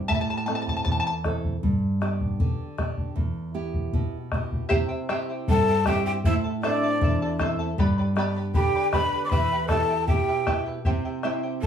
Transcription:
0.08 A2 E5 A5, bombo low
0.15 A5
0.21 A5
0.30 A5
0.37 A5
0.46 C4 E4 A4 A5, bombo rim
0.55 A5
0.62 A5
0.67 A5, bombo low
0.77 A5
0.85 E2 A5, bombo low
0.92 A5
1.00 A5
1.07 A5
1.24 C4 E4 A4, bombo rim, bombo low
1.44 bombo low
1.63 G2, bombo low
2.01 B3 D4 G4, bombo rim
2.21 bombo low
2.40 D3, bombo low
2.78 B3 D4 G4, bombo rim, bombo low
2.97 bombo low
3.16 E2, bombo low
3.54 B3 E4 G4
3.74 bombo low
3.93 B2, bombo low
4.32 B3 E4 G4, bombo rim, bombo low
4.52 bombo low
4.69 C3 E4 G4 C5 E5 G5, bombo low
4.89 E4 C5 G5
5.09 C4 E4 G4 C5 E5 G5, bombo rim
5.29 E4 C5 G5
5.48 G2 E4 A4 C5 E5 G5 A5, bombo low
5.69 E4 C5 G5
5.86 C4 E4 G4 C5 E5 G5, bombo rim, bombo low
6.05 E4 G4 C5 G5
6.24 A2 E4 A4 C5 E5 A5, bombo low
6.44 E4 A4 A5
6.63 C4 D4 E4 A4 C5 D5 E5 A5, bombo rim
6.84 E4 A4 A5
7.01 E2 E4 A4 E5 A5, bombo low
7.22 E4 A4 A5
7.39 C4 E4 A4 C5 E5 A5, bombo rim, bombo low
7.59 E4 A4 A5
7.78 G2 G4 B4 D5 G5 B5, bombo low
7.98 B4 D5 B5
8.16 B3 D4 G4 B4 D5 G5 B5, bombo rim
8.37 B4 D5 B5
8.54 D3 G4 B4 D5 G5 B5, bombo low
8.76 B4 D5 B5
8.92 B3 D4 G4 B4 D5 G5 B5, bombo rim, bombo low
9.13 B4 D5 B5
9.25 D5 D6
9.30 E2 E4 G4 B4 E5 G5 B5, bombo low
9.52 E4 B4 G5
9.67 B3 E4 G4 A4 B4 E5 A5, bombo rim, bombo low
9.72 G4 G5
9.90 E4 B4 G5
10.07 B2 E4 G4 B4 E5 G5, bombo low
10.28 E4 B4 G5
10.47 B3 E4 G4 B4 E5 G5, bombo rim, bombo low
10.66 E4 B4 G5
10.85 C3 E4 G4 C5 E5 G5, bombo low
11.05 E4 C5 G5
11.23 C4 E4 G4 C5 E5 G5, bombo rim
11.43 E4 C5 G5
11.62 G2 A4 E5 A5, bombo low

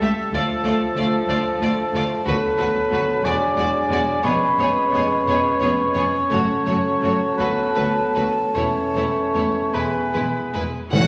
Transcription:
Already playing: A3 G4 A4
0.01 C#2 A3 G4 E5
0.31 D2 F3 A3 F4 D5 A5
0.62 D2 A3 F4 D5
0.94 D2 A3 F4 D5
1.26 D2 A3 F4 D5
1.60 D2 A3 F4 D5
1.92 D2 A3 F4 D5
2.25 D2 F#3 A3 B3 F#4 A4 B4
2.58 D2 A3 F#4 B4
2.90 D2 A3 F#4 B4
3.21 E1 E2 G#3 D4 G#4 D5 G#5
3.25 F#4 D5
3.56 E1 E2 G#3 F#4 D5
3.89 E1 E2 G#3 F#4 D5
4.23 F1 F2 G#3 B3 C#4 G#4 B4 C#5 B5
4.58 F1 F2 B3 G#4 C#5
4.92 F1 F2 B3 G#4 C#5
5.26 F1 F2 B3 G#4 C#5
5.60 F1 F2 B3 G#4 C#5
5.94 F1 F2 B3 G#4 C#5
6.30 F#1 F#2 F#3 A3 F#4 A4 C#5 A5
6.65 F#1 F#2 A3 F#4 C#5
7.01 F#1 F#2 A3 F#4 C#5
7.38 D2 A3 B3 F#4 B4
7.75 D2 A3 F#4 B4
8.15 D2 A3 F#4 B4
8.53 E1 E2 E3 A3 C#4 E4 C#5
8.95 E1 E2 A3 E4 C#5
9.34 E1 E2 A3 E4 C#5
9.73 E1 E2 G#3 B3 E4 G#4 B4 B5
9.79 G#5
10.13 E1 E2 G#3 E4 B4
10.53 E1 E2 G#3 E4 B4
10.92 A1 A2 E3 A3 C#4 E4 F#4 F#5

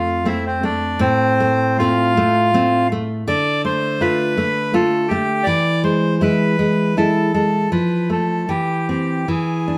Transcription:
Already playing: F2 A3 F4
0.25 A3 C4 E4
0.46 C4
0.63 A3 D4
0.99 A2 C4
1.40 A3
1.78 A3 C4 F4
2.17 A3
2.54 A3 C4
2.92 A3
3.28 D3 D5
3.65 A3 C5
4.01 A3 F4 B4
4.37 A3
4.74 A3 F4 A4
5.08 A3 G4
5.43 E3 D5
5.84 G#3 C5
6.21 G#3 E4 B4
6.59 G#3
6.97 G#3 E4 A4
7.34 G#3 A4
7.72 F3 B4
8.10 A3 A4
8.49 E3 G4
8.89 C4 G4
9.28 E3 G#4
9.68 D4

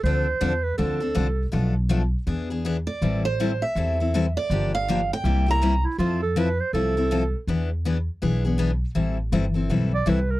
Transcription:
0.03 D2 D3 F3 C4 D4 A4 C5
0.41 E2 D3 F3 C4 D4 A4
0.63 B4
0.78 D2 D3 F3 C4 D4 A4
1.00 C4 D4 A4
1.15 C2 D3 F3 C4 D4 A4
1.52 B1 B2 F3 A3 D4 A4
1.89 B2 F3 A3 D4 A4
2.27 E2 E3 B3 D4 G#4
2.50 B3 D4 G#4
2.65 E3 B3 D4 G#4
2.87 D5
3.02 A1 E3 G3 C4 E4 A4
3.25 C5
3.40 E3 G3 C4 E4 A4
3.62 E5
3.75 E2 E3 G3 C4 E4 A4
4.00 C4 E4 A4
4.14 E3 G3 C4 E4 A4
4.37 D5
4.50 G1 D3 F3 A#3 D4 G4
4.75 F5
4.88 D3 F3 A#3 D4 G4
5.13 G5
5.24 C2 C3 G3 A#3 E4 G4
5.46 A#3 E4 G4
5.51 A#5
5.62 C3 G3 A#3 E4 G4
5.84 E4
5.98 F2 F3 C4 E4 F4 A4
6.23 A4
6.36 F3 C4 E4 A4 B4
6.60 C5
6.73 C2 F3 C4 E4 A4
6.97 C4 E4 A4
7.11 F3 C4 E4 A4
7.47 E2 E3 B3 D4 G#4
7.85 E3 B3 D4 G#4
8.22 B1 E3 B3 D4 G#4
8.45 B3 D4 G#4
8.58 E3 B3 D4 G#4
8.95 A1 E3 G3 C4 E4 A4
9.32 G1 E3 G3 C4 E4 A4
9.54 C4 E4 A4
9.69 B1 E3 G3 C4 E4 A4
9.94 D5
10.06 C2 E3 G3 C4 E4 A4 B4
10.31 A#4

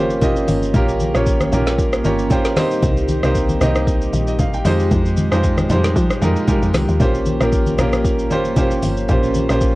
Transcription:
Already playing: G1 C#3 F3 A#3 C4 C#4 F4 G4 C5
0.10 shaker
0.21 A#3 C#4 F4 G4 D#5, kick, low conga, shaker
0.36 shaker
0.48 G1, open hi-hat, high conga, shaker
0.62 shaker
0.74 A#1 A#3 C#4 F4 G4 A#4, kick, low conga, shaker
0.89 shaker
1.00 high conga, shaker
1.14 A#1 A#3 C#4 F4 G4 C#5, cross-stick, shaker
1.26 kick, shaker
1.40 cross-stick, high conga, shaker
1.52 A#1 A#3 C#4 F4 G4 A#4, high conga, low conga, shaker
1.67 snare, shaker
1.78 kick, shaker
1.93 cross-stick, shaker
2.04 G1 A#3 C#4 F4 G4 C#5 A#5, high conga, shaker
2.19 shaker
2.30 A#3 C#4 F4 G4 C5 G5, kick, low conga, shaker
2.45 snare, shaker
2.56 A#2 G3 A#3 C4 D#4 G4 C5 D#5, cross-stick, snare, open hi-hat, high conga, shaker
2.71 shaker
2.83 C2, kick, low conga, shaker
2.97 shaker
3.08 high conga, shaker
3.23 C2 A#3 C4 D#4 G4 C5, cross-stick, shaker
3.35 kick, shaker
3.49 high conga, shaker
3.61 C2 A#3 C4 D#4 G4 D#5, cross-stick, high conga, low conga, shaker
3.75 cross-stick, shaker
3.87 kick, shaker
4.02 shaker
4.13 A#1, high conga, shaker
4.27 D#5, shaker
4.39 F5, kick, low conga, shaker
4.54 G5, shaker
4.65 F2 F3 G#3 D#4 F4 G4 C5, open hi-hat, high conga, shaker
4.80 shaker
4.91 F2, kick, low conga, shaker
5.06 shaker
5.17 high conga, shaker
5.31 F2 G#3 D#4 F4 G4 C5, cross-stick, shaker
5.44 kick, shaker
5.58 cross-stick, high conga, shaker
5.69 F2 G3 D#4 F4 G4 C5, high conga, low conga, shaker
5.76 G#3
5.84 snare, shaker
5.96 F3, kick, shaker
6.10 cross-stick, shaker
6.21 F2 G#3 D#4 F4 G4 A#4, high conga, shaker
6.36 shaker
6.47 G#3 D#4 F4 G4 A#4, kick, low conga, shaker
6.62 F2, shaker
6.74 C2, cross-stick, snare, open hi-hat, high conga, shaker
6.89 D#2, shaker
7.00 A#1 A#3 C#4 F4 G4 C5, kick, low conga, shaker
7.14 shaker
7.26 high conga, shaker
7.40 A#1 A#3 C#4 F4 G4 A#4, cross-stick, shaker
7.52 kick, shaker
7.66 high conga, shaker
7.78 A#1 A#3 C#4 F4 G4 A#4, cross-stick, high conga, low conga, shaker
7.93 cross-stick, shaker
8.04 kick, shaker
8.19 shaker
8.30 G1 A#3 C#4 F4 G4 C5, high conga, shaker
8.45 shaker
8.56 A#3 C#4 F4 G4 C5, kick, low conga, shaker
8.71 shaker
8.83 G1, open hi-hat, high conga, shaker
8.97 shaker
9.09 A#1 A#3 C#4 F4 G4 C5, kick, low conga, shaker
9.23 shaker
9.34 high conga, shaker
9.49 A#1 A#3 C#4 F4 G4 C5, cross-stick, shaker
9.61 kick, shaker

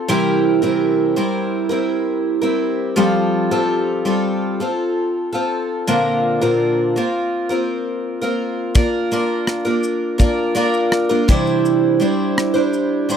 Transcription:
0.08 C3 E3 G3 C4 E4 A#4
0.62 C3 E3 G3 C4 E4 A#4
1.16 G3 C4 E4 A#4
1.69 G3 C4 E4 A#4
2.42 G3 C4 E4 A#4
2.96 F3 G3 C4 F4 A4
3.51 F3 G3 C4 F4 A4
4.05 G3 C4 F4 A4
4.60 C4 F4 A4
5.33 C4 F4 A4
5.87 A#2 D3 A#3 C4 F4 A#4
6.41 A#2 D3 A#3 C4 F4 A#4
6.96 A#3 C4 F4 A#4
7.49 A#3 C4 F4 A#4
8.22 A#3 C4 F4 A#4
8.75 A#3 D4 F4 A#4, kick, shaker
9.11 A#3 D4 F4 A#4, shaker
9.47 cross-stick, shaker
9.65 A#3 D4 F4 A#4
9.83 shaker
10.18 A#3 D4 F4 A#4, kick, shaker
10.55 A#3 D4 F4 A#4, shaker
10.74 shaker
10.92 cross-stick, shaker
11.09 A#3 D4 F4 A#4
11.28 C3 E3 G3 D4 E4 C5, kick, cross-stick, shaker
11.47 shaker
11.65 shaker
12.00 G3 D4 E4 C5, shaker
12.38 cross-stick, shaker
12.54 G3 D4 E4 C5
12.73 shaker
13.09 G3 D4 E4 C5, shaker

